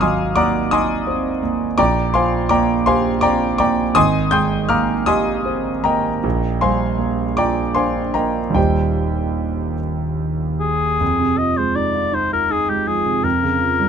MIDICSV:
0, 0, Header, 1, 3, 480
1, 0, Start_track
1, 0, Tempo, 710900
1, 1211, Time_signature, 6, 3, 24, 8
1, 1211, Tempo, 727273
1, 3131, Tempo, 766284
1, 5051, Tempo, 809717
1, 6971, Tempo, 741656
1, 8835, End_track
2, 0, Start_track
2, 0, Title_t, "Grand piano"
2, 0, Program_c, 0, 0
2, 0, Control_c, 0, 64, 127
2, 0, Note_on_c, 0, 32, 67
2, 0, Note_on_c, 0, 77, 98
2, 0, Note_on_c, 0, 82, 91
2, 0, Note_on_c, 0, 86, 86
2, 0, Note_on_c, 0, 89, 122
2, 5, Note_on_c, 0, 87, 86
2, 11, Note_on_c, 0, 54, 55
2, 12, Note_on_c, 0, 80, 73
2, 14, Note_on_c, 0, 84, 61
2, 15, Note_on_c, 0, 75, 68
2, 233, Note_off_c, 0, 80, 0
2, 234, Note_off_c, 0, 75, 0
2, 234, Note_off_c, 0, 84, 0
2, 240, Note_off_c, 0, 86, 0
2, 240, Note_on_c, 0, 86, 102
2, 246, Note_off_c, 0, 87, 0
2, 246, Note_on_c, 0, 58, 56
2, 246, Note_on_c, 0, 78, 75
2, 247, Note_on_c, 0, 74, 80
2, 249, Note_off_c, 0, 82, 0
2, 249, Note_on_c, 0, 82, 83
2, 394, Note_off_c, 0, 54, 0
2, 473, Note_off_c, 0, 78, 0
2, 474, Note_off_c, 0, 74, 0
2, 474, Note_off_c, 0, 82, 0
2, 481, Note_on_c, 0, 87, 105
2, 487, Note_off_c, 0, 86, 0
2, 487, Note_on_c, 0, 63, 64
2, 489, Note_on_c, 0, 80, 78
2, 491, Note_on_c, 0, 84, 77
2, 492, Note_on_c, 0, 75, 84
2, 635, Note_off_c, 0, 58, 0
2, 723, Note_on_c, 0, 60, 59
2, 873, Note_off_c, 0, 63, 0
2, 943, Note_off_c, 0, 80, 0
2, 943, Note_off_c, 0, 84, 0
2, 944, Note_off_c, 0, 75, 0
2, 963, Note_on_c, 0, 58, 60
2, 966, Note_off_c, 0, 87, 0
2, 1110, Note_off_c, 0, 60, 0
2, 1184, Note_off_c, 0, 32, 0
2, 1199, Note_on_c, 0, 86, 114
2, 1204, Note_on_c, 0, 79, 83
2, 1205, Note_on_c, 0, 34, 77
2, 1205, Note_on_c, 0, 82, 85
2, 1207, Note_off_c, 0, 58, 0
2, 1208, Note_on_c, 0, 74, 90
2, 1220, Control_c, 0, 64, 0
2, 1224, Note_off_c, 0, 89, 0
2, 1225, Note_off_c, 0, 77, 0
2, 1315, Control_c, 0, 64, 127
2, 1429, Note_off_c, 0, 79, 0
2, 1430, Note_off_c, 0, 82, 0
2, 1431, Note_off_c, 0, 74, 0
2, 1438, Note_on_c, 0, 84, 101
2, 1444, Note_off_c, 0, 86, 0
2, 1444, Note_on_c, 0, 53, 55
2, 1445, Note_on_c, 0, 77, 81
2, 1447, Note_on_c, 0, 72, 74
2, 1447, Note_on_c, 0, 80, 72
2, 1671, Note_off_c, 0, 77, 0
2, 1672, Note_off_c, 0, 72, 0
2, 1672, Note_off_c, 0, 80, 0
2, 1673, Note_on_c, 0, 86, 103
2, 1681, Note_on_c, 0, 58, 61
2, 1681, Note_on_c, 0, 74, 74
2, 1681, Note_on_c, 0, 82, 86
2, 1683, Note_on_c, 0, 79, 75
2, 1684, Note_off_c, 0, 84, 0
2, 1832, Note_off_c, 0, 53, 0
2, 1909, Note_off_c, 0, 74, 0
2, 1909, Note_off_c, 0, 82, 0
2, 1910, Note_off_c, 0, 79, 0
2, 1915, Note_on_c, 0, 84, 100
2, 1920, Note_on_c, 0, 67, 65
2, 1922, Note_off_c, 0, 86, 0
2, 1922, Note_on_c, 0, 77, 81
2, 1923, Note_on_c, 0, 72, 82
2, 1923, Note_on_c, 0, 80, 79
2, 2070, Note_off_c, 0, 58, 0
2, 2147, Note_on_c, 0, 86, 102
2, 2149, Note_off_c, 0, 77, 0
2, 2150, Note_off_c, 0, 72, 0
2, 2150, Note_off_c, 0, 80, 0
2, 2155, Note_on_c, 0, 82, 90
2, 2156, Note_on_c, 0, 60, 55
2, 2156, Note_on_c, 0, 79, 82
2, 2158, Note_on_c, 0, 74, 87
2, 2163, Note_off_c, 0, 84, 0
2, 2309, Note_off_c, 0, 67, 0
2, 2383, Note_off_c, 0, 86, 0
2, 2386, Note_off_c, 0, 79, 0
2, 2386, Note_off_c, 0, 82, 0
2, 2387, Note_off_c, 0, 74, 0
2, 2393, Note_on_c, 0, 86, 102
2, 2401, Note_on_c, 0, 58, 53
2, 2401, Note_on_c, 0, 82, 76
2, 2402, Note_on_c, 0, 74, 77
2, 2403, Note_on_c, 0, 79, 76
2, 2546, Note_off_c, 0, 60, 0
2, 2620, Note_off_c, 0, 34, 0
2, 2627, Note_off_c, 0, 82, 0
2, 2628, Note_off_c, 0, 74, 0
2, 2628, Note_off_c, 0, 79, 0
2, 2634, Note_on_c, 0, 87, 122
2, 2639, Note_on_c, 0, 32, 83
2, 2640, Note_off_c, 0, 86, 0
2, 2641, Note_on_c, 0, 75, 86
2, 2641, Note_on_c, 0, 80, 89
2, 2642, Note_on_c, 0, 84, 89
2, 2644, Note_off_c, 0, 58, 0
2, 2661, Control_c, 0, 64, 0
2, 2757, Control_c, 0, 64, 127
2, 2866, Note_off_c, 0, 75, 0
2, 2866, Note_off_c, 0, 80, 0
2, 2867, Note_off_c, 0, 84, 0
2, 2871, Note_off_c, 0, 87, 0
2, 2872, Note_on_c, 0, 91, 105
2, 2878, Note_on_c, 0, 56, 54
2, 2878, Note_on_c, 0, 84, 83
2, 2881, Note_on_c, 0, 79, 78
2, 2881, Note_on_c, 0, 87, 78
2, 3109, Note_off_c, 0, 84, 0
2, 3111, Note_off_c, 0, 79, 0
2, 3111, Note_off_c, 0, 87, 0
2, 3120, Note_on_c, 0, 89, 92
2, 3123, Note_off_c, 0, 91, 0
2, 3125, Note_on_c, 0, 58, 57
2, 3126, Note_on_c, 0, 77, 77
2, 3126, Note_on_c, 0, 82, 80
2, 3127, Note_on_c, 0, 86, 81
2, 3269, Note_off_c, 0, 56, 0
2, 3350, Note_off_c, 0, 77, 0
2, 3350, Note_off_c, 0, 82, 0
2, 3351, Note_off_c, 0, 86, 0
2, 3357, Note_on_c, 0, 87, 109
2, 3362, Note_on_c, 0, 67, 67
2, 3364, Note_off_c, 0, 89, 0
2, 3364, Note_on_c, 0, 80, 80
2, 3366, Note_on_c, 0, 75, 85
2, 3367, Note_on_c, 0, 84, 74
2, 3511, Note_off_c, 0, 58, 0
2, 3604, Note_on_c, 0, 60, 61
2, 3751, Note_off_c, 0, 67, 0
2, 3824, Note_off_c, 0, 80, 0
2, 3825, Note_off_c, 0, 75, 0
2, 3825, Note_off_c, 0, 84, 0
2, 3842, Note_on_c, 0, 82, 90
2, 3845, Note_off_c, 0, 87, 0
2, 3849, Note_on_c, 0, 58, 51
2, 3849, Note_on_c, 0, 79, 70
2, 3850, Note_on_c, 0, 70, 74
2, 3850, Note_on_c, 0, 75, 72
2, 3994, Note_off_c, 0, 60, 0
2, 4064, Note_off_c, 0, 32, 0
2, 4092, Note_on_c, 0, 34, 73
2, 4093, Note_off_c, 0, 58, 0
2, 4107, Control_c, 0, 64, 0
2, 4199, Control_c, 0, 64, 127
2, 4309, Note_off_c, 0, 70, 0
2, 4309, Note_off_c, 0, 75, 0
2, 4309, Note_off_c, 0, 79, 0
2, 4327, Note_on_c, 0, 84, 90
2, 4329, Note_on_c, 0, 55, 51
2, 4330, Note_off_c, 0, 82, 0
2, 4331, Note_on_c, 0, 80, 74
2, 4332, Note_on_c, 0, 77, 68
2, 4333, Note_on_c, 0, 72, 68
2, 4562, Note_on_c, 0, 58, 49
2, 4714, Note_off_c, 0, 55, 0
2, 4785, Note_off_c, 0, 80, 0
2, 4786, Note_off_c, 0, 72, 0
2, 4786, Note_off_c, 0, 77, 0
2, 4801, Note_on_c, 0, 86, 99
2, 4807, Note_on_c, 0, 65, 57
2, 4808, Note_off_c, 0, 84, 0
2, 4808, Note_on_c, 0, 74, 78
2, 4808, Note_on_c, 0, 82, 70
2, 4810, Note_on_c, 0, 79, 75
2, 4951, Note_off_c, 0, 58, 0
2, 5034, Note_off_c, 0, 74, 0
2, 5034, Note_off_c, 0, 82, 0
2, 5035, Note_off_c, 0, 79, 0
2, 5037, Note_on_c, 0, 84, 90
2, 5043, Note_on_c, 0, 62, 53
2, 5044, Note_on_c, 0, 80, 67
2, 5045, Note_on_c, 0, 72, 71
2, 5045, Note_on_c, 0, 77, 68
2, 5047, Note_off_c, 0, 86, 0
2, 5189, Note_off_c, 0, 65, 0
2, 5264, Note_off_c, 0, 72, 0
2, 5264, Note_off_c, 0, 77, 0
2, 5264, Note_off_c, 0, 80, 0
2, 5272, Note_on_c, 0, 82, 87
2, 5277, Note_off_c, 0, 84, 0
2, 5277, Note_on_c, 0, 70, 58
2, 5278, Note_on_c, 0, 58, 45
2, 5279, Note_on_c, 0, 75, 68
2, 5279, Note_on_c, 0, 79, 62
2, 5422, Note_off_c, 0, 62, 0
2, 5487, Note_on_c, 0, 39, 65
2, 5492, Note_off_c, 0, 58, 0
2, 5494, Note_on_c, 0, 55, 46
2, 5499, Note_off_c, 0, 34, 0
2, 5501, Note_on_c, 0, 58, 46
2, 5503, Note_off_c, 0, 70, 0
2, 5503, Note_off_c, 0, 79, 0
2, 5504, Note_off_c, 0, 75, 0
2, 5505, Note_on_c, 0, 63, 45
2, 5511, Note_on_c, 0, 65, 44
2, 5512, Note_on_c, 0, 27, 55
2, 5512, Note_on_c, 0, 79, 80
2, 5518, Note_off_c, 0, 82, 0
2, 5518, Note_on_c, 0, 75, 63
2, 5522, Note_on_c, 0, 67, 59
2, 5522, Note_on_c, 0, 72, 61
2, 5537, Control_c, 0, 64, 0
2, 5627, Control_c, 0, 64, 127
2, 6220, Note_off_c, 0, 75, 0
2, 6222, Note_off_c, 0, 67, 0
2, 6222, Note_off_c, 0, 72, 0
2, 6241, Note_off_c, 0, 79, 0
2, 6929, Note_off_c, 0, 39, 0
2, 6933, Note_off_c, 0, 55, 0
2, 6936, Note_off_c, 0, 58, 0
2, 6939, Note_off_c, 0, 63, 0
2, 6941, Note_off_c, 0, 65, 0
2, 6942, Note_off_c, 0, 27, 0
2, 6970, Note_on_c, 0, 41, 63
2, 6985, Control_c, 0, 64, 0
2, 7095, Note_on_c, 0, 48, 48
2, 7110, Control_c, 0, 64, 127
2, 7210, Note_on_c, 0, 53, 46
2, 7291, Note_off_c, 0, 48, 0
2, 7336, Note_on_c, 0, 56, 44
2, 7410, Note_off_c, 0, 53, 0
2, 7455, Note_on_c, 0, 63, 44
2, 7533, Note_off_c, 0, 56, 0
2, 7577, Note_on_c, 0, 65, 49
2, 7653, Note_off_c, 0, 63, 0
2, 7695, Note_on_c, 0, 63, 50
2, 7774, Note_off_c, 0, 65, 0
2, 7819, Note_on_c, 0, 65, 44
2, 7893, Note_off_c, 0, 63, 0
2, 7938, Note_on_c, 0, 63, 50
2, 8014, Note_off_c, 0, 65, 0
2, 8059, Note_on_c, 0, 56, 46
2, 8133, Note_off_c, 0, 63, 0
2, 8175, Note_on_c, 0, 53, 43
2, 8252, Note_off_c, 0, 56, 0
2, 8300, Note_on_c, 0, 48, 44
2, 8370, Note_off_c, 0, 53, 0
2, 8395, Note_off_c, 0, 41, 0
2, 8415, Note_on_c, 0, 41, 66
2, 8420, Note_off_c, 0, 48, 0
2, 8431, Control_c, 0, 64, 0
2, 8539, Control_c, 0, 64, 127
2, 8540, Note_on_c, 0, 49, 43
2, 8656, Note_on_c, 0, 53, 43
2, 8726, Note_off_c, 0, 49, 0
2, 8774, Note_on_c, 0, 55, 44
2, 8835, Note_off_c, 0, 41, 0
2, 8835, Note_off_c, 0, 53, 0
2, 8835, Note_off_c, 0, 55, 0
2, 8835, End_track
3, 0, Start_track
3, 0, Title_t, "Oboe"
3, 0, Program_c, 1, 68
3, 6727, Note_on_c, 1, 68, 73
3, 7211, Note_on_c, 1, 75, 75
3, 7221, Note_off_c, 1, 68, 0
3, 7338, Note_on_c, 1, 72, 72
3, 7347, Note_off_c, 1, 75, 0
3, 7457, Note_on_c, 1, 74, 83
3, 7467, Note_off_c, 1, 72, 0
3, 7707, Note_on_c, 1, 72, 88
3, 7717, Note_off_c, 1, 74, 0
3, 7824, Note_off_c, 1, 72, 0
3, 7827, Note_on_c, 1, 70, 75
3, 7945, Note_on_c, 1, 68, 76
3, 7955, Note_off_c, 1, 70, 0
3, 8063, Note_on_c, 1, 67, 69
3, 8073, Note_off_c, 1, 68, 0
3, 8181, Note_on_c, 1, 68, 72
3, 8191, Note_off_c, 1, 67, 0
3, 8414, Note_on_c, 1, 70, 81
3, 8423, Note_off_c, 1, 68, 0
3, 8835, Note_off_c, 1, 70, 0
3, 8835, End_track
0, 0, End_of_file